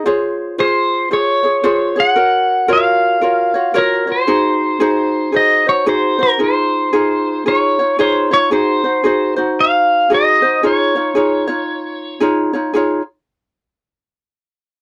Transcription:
X:1
M:4/4
L:1/8
Q:"Swing" 1/4=114
K:Db
V:1 name="Pedal steel guitar"
z2 c2 d3 g- | g2 f4 B c- | c4 e d c B | c4 d2 c d |
c3 z f2 e2 | d6 z2 | z8 |]
V:2 name="Ukulele"
[FAcd]2 [FAc]2 [FAcd] [FAd] [FAcd] [FAd] | [GBd]2 [FGBd]2 [FGBd] [FGd] [FGBd] [FGd] | [EGAc]2 [EGAc]2 [EGAc] [EGc] [EGAc] [EGc] | [EFA]2 [EFA]2 [EFAd] [EFd] [EFAd] [EFd] |
[EGAc] [EGc] [EGAc] [EGc]3 [EGAc] [EGc] | [EFAd] [EFd] [EFAd] [EFd]3 [EFAd] [EFd] | [EFAd] z6 z |]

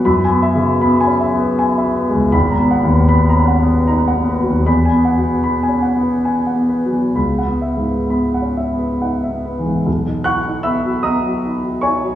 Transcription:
X:1
M:3/4
L:1/16
Q:1/4=76
K:B
V:1 name="Grand piano"
b g e B b g e B g e B C,, | b a f B b a f B a f B D,, | b g f B b g f B g f B B,, | b f e B b f e B f e B G,, |
z2 [fc'f']2 [ebe']2 [dad']4 [cgc']2 |]
V:2 name="Grand piano"
(3F,,2 B,2 C,2 (3B,2 C2 B,2- (3B,2 B,2 G,2 | (3G,,,2 B,2 D,,2 (3B,2 C2 B,2 (3D2 B,2 F,2 | (3E,,2 B,2 B,,2 (3B,2 C2 B,2- (3B,2 B,2 F,2 | (3C,,2 B,2 G,,2 (3B,2 C2 B,2 (3D2 B,2 E,2 |
B,,, D E D B, F, B, F, D F, D F, |]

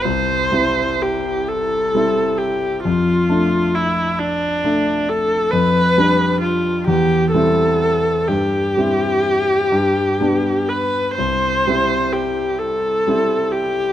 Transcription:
X:1
M:6/8
L:1/8
Q:3/8=43
K:C
V:1 name="Viola"
c2 G A2 G | F2 E D2 A | B2 F G A2 | G4- G B |
c2 G A2 G |]
V:2 name="Grand piano"
C,, [G,CE]3 [G,CE]2 | F,, [A,D]3 [A,D]2 | F,, [G,D]2 E,, [G,CE]2 | G,, [G,CE]2 G,, [G,B,D]2 |
C,, [G,CE]3 [G,CE]2 |]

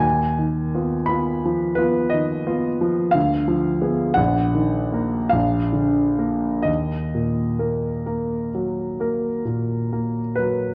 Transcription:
X:1
M:9/8
L:1/8
Q:3/8=52
K:Ebm
V:1 name="Grand piano"
a3 c'2 c e3 | f3 g3 f3 | e6 z2 c |]
V:2 name="Grand piano"
E,, E, [CF] [CF] F, [CF] E, [CF] F, | =D,, F, [=B,A] _B,,, E, [_B,B] B,,, =D, [B,B] | E,, B,, [B,B] [B,B] G, [B,B] B,, [B,B] G, |]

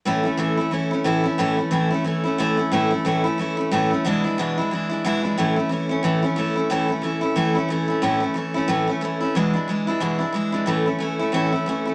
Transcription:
X:1
M:4/4
L:1/8
Q:"Swing" 1/4=181
K:A
V:1 name="Steel-string acoustic guitar"
[A,,E,A,CE] [A,CE] [A,,E,A,CE] [A,CE] [E,A,CE] [A,CE] [A,,E,A,CE] [A,CE] | [A,,E,A,CE] [A,CE] [A,,E,A,CE] [A,CE] [E,A,CE] [A,CE] [A,,E,A,CE] [A,CE] | [A,,E,A,CE] [A,CE] [A,,E,A,CE] [A,CE] [E,A,CE] [A,CE] [A,,E,A,CE] [A,CE] | [E,,B,,E,G,DE] [E,G,DE] [E,,B,,E,G,DE] [E,G,DE] [E,G,DE] [E,G,DE] [E,,B,,E,G,DE] [E,G,DE] |
[A,,E,A,CE] [A,CE] [E,A,CE] [A,CE] [A,,E,A,CE] [A,CE] [E,A,CE] [A,CE] | [A,,E,A,CE] [A,CE] [E,A,CE] [A,CE] [A,,E,A,CE] [A,CE] [E,A,CE] [A,CE] | [A,,E,A,CE] [A,CE] [E,A,CE] [A,CE] [A,,E,A,CE] [A,CE] [E,A,CE] [A,CE] | [E,,B,,E,G,DE] [E,G,DE] [E,G,DE] [E,G,DE] [E,,B,,E,G,DE] [E,G,DE] [E,G,DE] [E,G,DE] |
[A,,E,A,CE] [A,CE] [E,A,CE] [A,CE] [A,,E,A,CE] [A,CE] [E,A,CE] [A,CE] |]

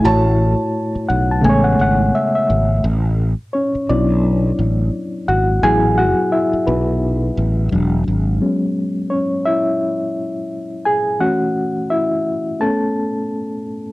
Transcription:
X:1
M:4/4
L:1/16
Q:"Swing 16ths" 1/4=86
K:Dlyd
V:1 name="Felt piano"
a12 z4 | z16 | z16 | z16 |
z16 |]
V:2 name="Reed electric piano"
z6 f a g f f2 e e3 | z4 [Cc]2 [Dd]8 [Ff]2 | [Gg]2 [Ff]2 [Ee]2 [B,B]6 z4 | z4 [Cc]2 [Ee]8 [Gg]2 |
[Ff]4 [Ee]4 [Aa]6 z2 |]
V:3 name="Reed electric piano"
[A,,A,EFc]8 [C,G,A,B,c]8 | z6 [F,B,E]2 z8 | [F,B,E]6 z6 [F,G,D]4 | [F,G,B,C]6 z8 z2 |
[E,A,C]6 z2 [A,B,C]2 z6 |]
V:4 name="Fretless electric bass" clef=bass
A,,,3 z3 B,,,2 A,,,2 G,,,2 z2 G,,,2 | A,,,3 z3 B,,,4 A,,,2 z2 G,,,2 | A,,,3 z3 B,,,4 A,,,2 E,,,2 G,,,2 | z16 |
z16 |]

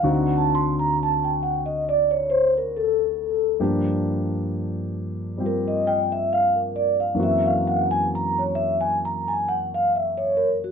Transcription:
X:1
M:4/4
L:1/16
Q:"Swing" 1/4=67
K:Gphr
V:1 name="Vibraphone"
^f =a c' b a g f e d _d c B =A4 | z8 B e g _f =f B d f | _f =f _g a b _d _f a b a g =f _f d B _G |]
V:2 name="Grand piano"
[D,,D,CE^F]16 | [G,,F,B,DG]8 [G,CFG]8 | [_G,,_F,B,C_G]16 |]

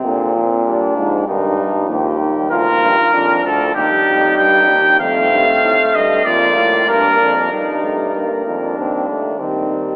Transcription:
X:1
M:4/4
L:1/8
Q:1/4=96
K:Eb
V:1 name="Trumpet"
z8 | B3 =A G2 g2 | f3 e d2 B2 | z8 |]
V:2 name="Flugelhorn"
C2 D2 E2 G2 | F2 D2 E4 | C3 z F2 D2 | E2 E D3 C2 |]
V:3 name="Trombone" clef=bass
D, F, G, F, E, G, F, E, | F, z F,2 G,4 | =A,4 B,4 | G, =A, B,2 C A, G, G, |]
V:4 name="Euphonium" clef=bass
B,,3 A,, G,,2 E,,2 | D,, G,, F,, D,, E,, F,, G,, E,, | F,, G,, =A,, G,, F,, A,, G,, F,, | G,,3 F,, E,,2 E,2 |]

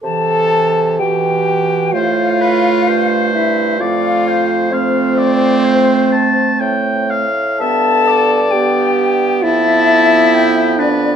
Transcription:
X:1
M:4/4
L:1/8
Q:1/4=65
K:C
V:1 name="Flute"
a2 g2 f3 e | f2 c4- c z | a2 g2 e3 d |]
V:2 name="Oboe"
z4 c B c2 | d c f d c a g f | e d2 z a2 g B |]
V:3 name="French horn"
A2 G2 F3 E | F2 C4- C z | A2 G2 E3 D |]
V:4 name="Clarinet"
E,2 E,2 A,4 | A,2 A,4- A, z | B,2 B,2 B,4 |]
V:5 name="Bassoon" clef=bass
C,2 B,,2 A,,2 G,,2 | F,,4- F,, z A,,2 | G,,4 F,,4 |]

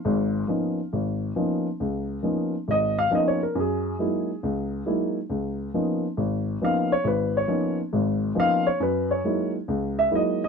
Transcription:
X:1
M:4/4
L:1/8
Q:"Swing" 1/4=137
K:Dbmix
V:1 name="Upright piano"
f6 z2 | z4 e f (3e d B | A6 z2 | z6 f d |
c d2 z3 f d | c d2 z2 _f e e |]
V:2 name="Upright piano"
[A,,,A,,]2 [F,B,CDE] z A,,,2 [F,B,CDE] z | D,,2 [F,B,CDE] z A,,,2 [F,B,CDE] z | G,,2 [G,A,B,E_F] z D,,2 [G,A,B,EF] z | D,,2 [F,B,CDE] z A,,,2 [F,B,CDE] z |
A,,,2 [F,B,CDE] z [A,,,A,,]2 [F,B,CDE] z | G,,2 [G,A,B,E_F] z D,,2 [G,A,B,EF] z |]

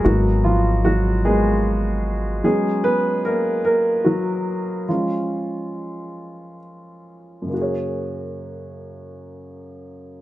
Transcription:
X:1
M:6/8
L:1/8
Q:3/8=48
K:F#
V:1 name="Upright piano"
[F,F] [E,E] [F,F] G2 z | [G,G] [B,B] [A,A] [A,A] [F,F]2 | E4 z2 | z6 |]
V:2 name="Upright piano"
[G,A,B,]3 [G,A,B,] z2 | [F,B,C] z4 z | [E,G,C]6 | [F,,C,A,FGc]6 |]
V:3 name="Upright bass" clef=bass
G,,,6 | z6 | z6 | z6 |]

